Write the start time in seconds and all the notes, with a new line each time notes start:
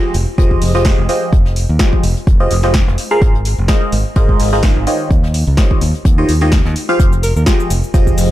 Already playing: F3 F4 G4 G#4 C5 D#5
0.14 F1, closed hi-hat, open hi-hat
0.38 F1 F3 F4 G4 G#4 C5 D#5, kick, closed hi-hat
0.51 kick
0.61 F1, open hi-hat
0.75 F3 F4 G4 G#4 C5 D#5, snare
0.85 F3 F4 G4 G#4 C5 D#5, kick, snare, closed hi-hat, open hi-hat
0.98 F1
1.09 F3 F4 G4 G#4 C5 D#5, closed hi-hat, open hi-hat
1.33 F1, kick, closed hi-hat
1.46 snare
1.56 closed hi-hat, open hi-hat
1.69 D#2
1.79 F3 F4 G4 G#4 C5 D#5, kick, snare, closed hi-hat
1.93 kick
2.03 F1, closed hi-hat, open hi-hat
2.17 closed hi-hat
2.27 F1, kick, closed hi-hat
2.40 F3 F4 G4 G#4 C5 D#5
2.51 F1, closed hi-hat, open hi-hat
2.63 F3 F4 G4 G#4 C5 D#5, snare
2.74 kick, snare, closed hi-hat
2.87 F1, snare
2.98 closed hi-hat, open hi-hat
3.11 G#3 F4 G#4 A#4 C5 F5
3.22 G#1, kick, closed hi-hat
3.35 closed hi-hat
3.45 closed hi-hat, open hi-hat
3.58 F1
3.68 G#3 F4 G#4 A#4 C5 D#5, kick, snare, closed hi-hat
3.92 G#1, closed hi-hat, open hi-hat
4.16 G#1 G#3 F4 G#4 A#4 C5 D#5, kick, closed hi-hat
4.29 kick
4.40 G#1, open hi-hat
4.53 G#3 F4 G#4 A#4 C5 D#5, snare
4.63 D#3 F4 G#4 A#4 C5 D#5, kick, snare, closed hi-hat, open hi-hat
4.76 G#1
4.87 D#3 F4 G4 C5 C#5 D#5, closed hi-hat, open hi-hat
5.11 D#2, kick, closed hi-hat
5.24 snare
5.34 closed hi-hat, open hi-hat
5.47 C#2
5.57 D#3 F4 G4 C5 C#5 D#5, kick, snare, closed hi-hat
5.71 kick
5.81 D#2, closed hi-hat, open hi-hat
5.95 closed hi-hat
6.05 D#2, kick, closed hi-hat
6.18 D#3 F4 G4 C5 C#5 D#5
6.29 D#2, closed hi-hat, open hi-hat
6.41 D#3 F4 G4 C5 C#5 D#5, snare
6.52 kick, snare, closed hi-hat
6.65 D#2, snare
6.76 closed hi-hat, open hi-hat
6.89 F3 F4 G4 G#4 C5 F5
7.00 F1, kick, closed hi-hat, cabasa
7.13 closed hi-hat, cabasa
7.23 A#4, closed hi-hat, open hi-hat, cabasa
7.36 D#2 A#4, cabasa
7.46 F3 F4 G4 G#4 C5 D#5, kick, snare, closed hi-hat, cabasa
7.60 cabasa
7.70 F1, closed hi-hat, open hi-hat, cabasa
7.84 cabasa
7.94 F1 F3 F4 G4 G#4 C5 D#5, kick, closed hi-hat, cabasa
8.07 kick, cabasa
8.18 F1, open hi-hat, cabasa